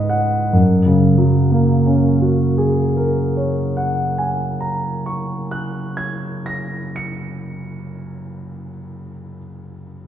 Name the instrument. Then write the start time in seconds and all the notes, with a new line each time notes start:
grand piano
Already playing: C#2 G#2 B4 D#5 F#5 B5 F#6 G#6 B6 D#7
0.09 F#5
0.53 F#2
0.86 C#3
1.18 F#3
1.51 A#3
1.87 C#4
2.22 F#4
2.58 G#4
2.97 A#4
3.37 C#5
3.77 F#5
4.18 G#5
4.60 A#5
5.06 C#6
5.51 F#6
5.97 G#6
6.46 A#6
6.96 C#7